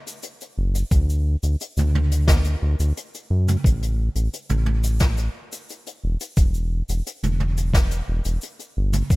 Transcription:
0.07 closed hi-hat, shaker
0.22 closed hi-hat, shaker
0.41 closed hi-hat, shaker
0.58 analog synth bass F#1
0.75 closed hi-hat, shaker
0.91 analog synth bass D2, kick, closed hi-hat, shaker
1.09 shaker
1.43 analog synth bass D2, closed hi-hat, shaker
1.60 closed hi-hat, shaker
1.77 analog synth bass D2, closed hi-hat, mid tom, shaker
1.95 mid tom
2.12 closed hi-hat, shaker
2.27 kick, snare, closed hi-hat, shaker
2.44 closed hi-hat, shaker
2.62 analog synth bass D2
2.80 analog synth bass D2, closed hi-hat, shaker
2.97 closed hi-hat, shaker
3.14 closed hi-hat, shaker
3.30 analog synth bass F#2
3.48 closed hi-hat, mid tom, shaker
3.64 analog synth bass A1, kick, closed hi-hat, shaker
3.82 closed hi-hat, shaker
4.15 analog synth bass A1, closed hi-hat, shaker
4.33 closed hi-hat, shaker
4.49 analog synth bass A1, closed hi-hat, mid tom, shaker
4.66 mid tom
4.83 closed hi-hat, shaker
4.99 kick, snare, closed hi-hat, shaker
5.17 closed hi-hat, shaker
5.52 closed hi-hat, shaker
5.69 closed hi-hat, shaker
5.87 closed hi-hat, shaker
6.04 analog synth bass E1
6.21 closed hi-hat, shaker
6.36 analog synth bass E1, kick, closed hi-hat, shaker
6.54 shaker
6.89 analog synth bass E1, closed hi-hat, shaker
7.07 closed hi-hat, shaker
7.23 analog synth bass E1, closed hi-hat, mid tom, shaker
7.40 mid tom
7.57 closed hi-hat, shaker
7.74 kick, snare, closed hi-hat, shaker
7.91 closed hi-hat, shaker
8.08 analog synth bass E1
8.25 analog synth bass E1, closed hi-hat, shaker
8.41 closed hi-hat, shaker
8.59 closed hi-hat, shaker
8.77 analog synth bass G1
8.93 closed hi-hat, mid tom, shaker
9.10 analog synth bass F#1, kick, closed hi-hat, shaker

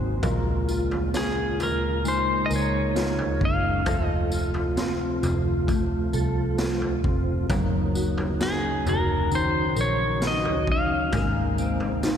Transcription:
Already playing: picked electric bass G#1, clean electric guitar G#2 F#3 C4 F#4 G#4, tonewheel organ C3 F#3 A#3 D#4
0.22 picked electric bass A#1, clean electric guitar A#2 A#4, tonewheel organ C#3 G#3 A#3 F4, kick, floor tom, tambourine
0.68 clean electric guitar F4, tambourine
0.91 floor tom
1.14 clean electric guitar C#4, pedal steel guitar G#4, snare, tambourine
1.59 picked electric bass G#1, clean electric guitar F4, floor tom, tambourine
1.63 pedal steel guitar A#4
2.04 clean electric guitar G#3, tonewheel organ D#4, tambourine
2.08 pedal steel guitar C5
2.46 clean electric guitar A#4, pedal steel guitar D#5
2.51 picked electric bass C#2, tambourine
2.56 pedal steel guitar C#5
2.95 clean electric guitar F4, snare, tambourine
3.19 floor tom
3.40 picked electric bass F#1, clean electric guitar C#4, kick
3.45 pedal steel guitar F5
3.85 picked electric bass F1, clean electric guitar F2 A4, tonewheel organ C3 F3 A3 F4, kick, floor tom, tambourine
4.05 pedal steel guitar D#5
4.31 clean electric guitar F4, tambourine
4.54 floor tom
4.77 clean electric guitar C4, snare, tambourine
5.22 picked electric bass F1, clean electric guitar F4, floor tom, tambourine
5.67 clean electric guitar A3, kick, floor tom, tambourine
6.13 picked electric bass C2, clean electric guitar A4, tambourine
6.58 clean electric guitar F4, snare, tambourine
6.82 floor tom
7.04 picked electric bass F1, clean electric guitar C4, kick
7.50 picked electric bass F#1, tonewheel organ C#3 F#3 A#3 D#4, clean electric guitar F#3 A#4, kick, floor tom, tambourine
7.95 clean electric guitar F#4, tambourine
8.18 floor tom
8.41 clean electric guitar C#4, pedal steel guitar G#4, snare, tambourine
8.86 picked electric bass F1, clean electric guitar F#4, pedal steel guitar A#4, floor tom, tambourine
9.31 clean electric guitar D#3, tonewheel organ C#4, tambourine
9.35 pedal steel guitar C5
9.76 picked electric bass A#1, clean electric guitar A#4, tambourine
9.81 pedal steel guitar C#5
10.22 clean electric guitar F#4, snare, tambourine
10.27 pedal steel guitar D#5
10.45 floor tom
10.67 picked electric bass F#1, clean electric guitar C#4, kick
10.72 pedal steel guitar F5
11.12 picked electric bass G#1, tonewheel organ C3 G#3 A#3, clean electric guitar G#3 A#4, kick, floor tom, tambourine
11.58 clean electric guitar C4, tambourine
11.80 floor tom
12.03 clean electric guitar D#4, snare, tambourine

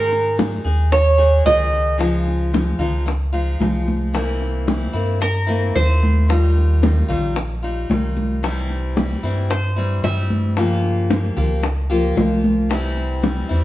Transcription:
Already playing: sub bass G#2, steel-string acoustic guitar D#3 G#3 D#4 G#4, cuban tres A#4
0.12 high bongo, high conga
0.37 steel-string acoustic guitar D#3 G#3 D#4 G#4, high bongo, high conga
0.64 sub bass D#2, steel-string acoustic guitar G#3 D#4 G#4, high bongo, high conga
0.92 cuban tres C#5, muted steel-string acoustic guitar stroke, high bongo, high conga
1.18 steel-string acoustic guitar G#3 D#4 G#4, high conga
1.45 sub bass C#2, steel-string acoustic guitar D#3 G#3 D#4 G#4, cuban tres D#5, high bongo, low bongo, high conga
1.74 high bongo
1.98 steel-string acoustic guitar C#3 F3 G#3 D#4 F4, high bongo, high conga
2.28 high bongo, high conga
2.52 steel-string acoustic guitar F3 G#3 D#4 F4, high bongo, high conga
2.78 sub bass C#2, steel-string acoustic guitar F3 G#3 D#4 F4, high bongo, high conga, low conga
3.06 muted steel-string acoustic guitar stroke, high bongo, high conga
3.33 steel-string acoustic guitar F3 G#3 D#4 F4, high conga
3.60 sub bass C2, steel-string acoustic guitar F3 G#3 D#4 F4, high bongo, low bongo, high conga
3.88 high bongo, high conga
4.14 steel-string acoustic guitar C3 E3 A#3 C4 E4, high bongo, high conga
4.41 high bongo, high conga
4.67 steel-string acoustic guitar E3 A#3 C4 E4, high bongo, high conga
4.93 sub bass G2, steel-string acoustic guitar E3 A#3 C4 E4, high bongo, high conga
5.21 cuban tres A#4, muted steel-string acoustic guitar stroke, high bongo, high conga
5.47 steel-string acoustic guitar E3 A#3 C4 E4, high conga
5.75 sub bass D#2, steel-string acoustic guitar A#3 C4 E4, cuban tres C5, high bongo, low bongo, high conga
6.03 high bongo, high conga
6.28 steel-string acoustic guitar D#3 G3 D#4 F4, high bongo
6.57 high bongo, high conga
6.82 steel-string acoustic guitar D#3 G3 D#4 F4, high bongo, high conga
7.08 sub bass A#1, steel-string acoustic guitar G3 D#4 F4, high bongo, high conga, low conga
7.36 muted steel-string acoustic guitar stroke, high bongo, high conga
7.63 steel-string acoustic guitar G3 D#4 F4, high conga
7.89 sub bass C2, steel-string acoustic guitar D#3 G3 D#4 F4, high bongo, low bongo, high conga
8.17 high bongo, high conga
8.43 steel-string acoustic guitar C3 E3 G3 C4 E4, high bongo, high conga
8.70 high bongo, high conga
8.96 steel-string acoustic guitar E3 G3 C4 E4, high bongo, high conga
9.23 sub bass G2, steel-string acoustic guitar E3 G3 C4 E4, high bongo, high conga
9.50 cuban tres C5, muted steel-string acoustic guitar stroke, high bongo, high conga
9.76 steel-string acoustic guitar E3 G3 C4 E4, high conga
10.03 sub bass G2, steel-string acoustic guitar E3 G3 C4 E4, cuban tres E5, high bongo, low bongo, high conga
10.30 high bongo, high conga
10.56 steel-string acoustic guitar C#3 F3 A#3 F4 G4, high bongo, high conga
10.84 high bongo, high conga
11.10 steel-string acoustic guitar F3 A#3 F4 G4, high bongo, high conga
11.37 sub bass C#2, steel-string acoustic guitar F3 A#3 F4 G4, high bongo, high conga, low conga
11.63 muted steel-string acoustic guitar stroke, high bongo, high conga
11.90 steel-string acoustic guitar F3 A#3 F4 G4, high conga
12.16 sub bass C2, steel-string acoustic guitar F3 A#3 F4 G4, high bongo, low bongo, high conga
12.44 high bongo, high conga
12.69 steel-string acoustic guitar C3 E3 G3 C4 E4, high bongo
12.97 high bongo, high conga
13.22 steel-string acoustic guitar E3 G3 C4 E4, high bongo, high conga
13.49 sub bass E2, steel-string acoustic guitar E3 G3 C4 E4, high bongo, high conga

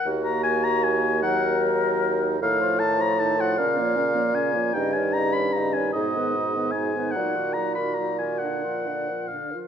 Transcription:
Already playing: flute A#4
0.06 bassoon D#2, french horn A#3, clarinet F#4
0.24 oboe A#5
0.43 oboe G#5
0.64 oboe A#5
0.84 oboe G#5
1.23 french horn F#3, clarinet D#4, flute A#4, oboe F#5
2.40 bassoon A2, french horn D#3, clarinet D#4, flute A4, oboe F5
2.61 french horn F3, clarinet F4, flute C5
2.79 french horn D#3, clarinet D#4, flute A4, oboe A5
2.97 french horn F3, clarinet F4, flute C5
3.01 oboe A#5
3.17 french horn D#3, clarinet D#4, flute B4, oboe A5
3.21 flute A4
3.37 french horn F3, clarinet F4, flute C5, oboe F#5
3.56 bassoon A#2, clarinet C#4, flute A#4 C5, oboe F5
3.60 french horn C#3
3.76 french horn F3, clarinet A#3, flute D#5
3.81 flute C#5
3.95 french horn C#3, clarinet C#4, flute A#4
4.15 french horn F3, clarinet A#3, flute C#5
4.34 french horn C#3, clarinet C#4, flute A#4, oboe G#5
4.53 french horn F3, clarinet A#3, flute C#5
4.73 bassoon G2, french horn C#3, clarinet D#4, flute D#5, oboe G5
4.93 french horn D#3, clarinet C#4, flute C#5, oboe G#5
5.13 french horn C#3, clarinet D#4, flute D#5, oboe A#5
5.33 french horn D#3, clarinet C#4, flute C#5, oboe B5
5.53 french horn C#3, clarinet D#4, flute F5, oboe A#5
5.59 flute D#5
5.73 french horn D#3, clarinet C#4, flute C#5, oboe G#5
5.93 bassoon G#2, french horn B2, clarinet D#4, flute G#4, oboe D#5
6.15 french horn D#3, clarinet B3, flute B4
6.35 french horn B2, clarinet D#4, flute G#4
6.54 french horn D#3, clarinet B3, flute B4
6.71 clarinet D#4, oboe G#5
6.75 french horn B2, flute G#4
6.95 french horn D#3, clarinet B3, flute B4
7.12 french horn F#3, clarinet D#4, flute F#4, oboe F#5
7.17 bassoon A#2
7.36 french horn D#3, clarinet F#4, flute A#4
7.54 french horn F#3, clarinet D#4, flute G#4, oboe A#5
7.59 flute F#4
7.75 french horn D#3, clarinet F#4, flute A#4, oboe B5
7.94 french horn F#3, oboe A#5
8.00 clarinet D#4, flute F#4
8.19 french horn D#3, clarinet F#4, flute A#4, oboe G#5
8.39 french horn D3, oboe F#5
8.43 clarinet D4, flute F5
8.48 flute D5
8.62 french horn F3, clarinet F4, flute A#4
8.85 french horn D3, clarinet D4, flute F5
8.92 flute D5
9.08 french horn F3, clarinet F4, flute A#4 C5
9.28 clarinet D4, flute D5, oboe F5
9.33 french horn D3
9.51 clarinet F4, flute A#4
9.56 french horn F3

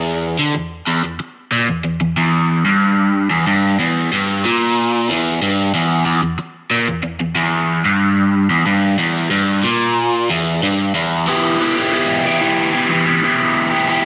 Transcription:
Already playing: overdriven electric guitar E2
0.39 overdriven electric guitar D3
0.55 overdriven electric guitar E2
0.87 overdriven electric guitar E2
1.04 overdriven electric guitar E2
1.20 muted overdriven electric guitar stroke
1.52 overdriven electric guitar A#2
1.68 overdriven electric guitar E2
1.84 overdriven electric guitar E2
2.01 overdriven electric guitar E2
2.17 overdriven electric guitar E2
2.65 overdriven electric guitar G2
3.30 overdriven electric guitar E2
3.47 overdriven electric guitar G2
3.79 overdriven electric guitar E2
4.12 overdriven electric guitar G2
4.44 overdriven electric guitar A#2
5.09 overdriven electric guitar E2
5.42 overdriven electric guitar G2
5.74 overdriven electric guitar E2
6.06 overdriven electric guitar E2
6.23 overdriven electric guitar E2
6.39 muted overdriven electric guitar stroke
6.71 overdriven electric guitar A#2
6.87 overdriven electric guitar E2
7.03 overdriven electric guitar E2
7.20 overdriven electric guitar E2
7.35 overdriven electric guitar E2
7.85 overdriven electric guitar G2
8.50 overdriven electric guitar E2
8.66 overdriven electric guitar G2
8.98 overdriven electric guitar E2
9.30 overdriven electric guitar G2
9.63 overdriven electric guitar A#2
10.29 overdriven electric guitar E2
10.63 overdriven electric guitar G2
10.94 overdriven electric guitar E2
11.26 overdriven electric guitar E3 B3 E4 G4
11.59 overdriven electric guitar E3 B3 E4 G4
11.76 overdriven electric guitar B3 E4 G4
11.91 overdriven electric guitar E3 B3 E4 G4
12.24 overdriven electric guitar E3 B3 E4 G4
12.40 overdriven electric guitar B3 E4 G4
12.72 overdriven electric guitar B3 E4 G4
12.89 overdriven electric guitar E3 B3 E4 G4
13.05 overdriven electric guitar B3 E4 G4
13.23 overdriven electric guitar E3 B3 E4 G4
13.70 overdriven electric guitar B3 E4 G4
13.88 overdriven electric guitar E3 B3 E4 G4

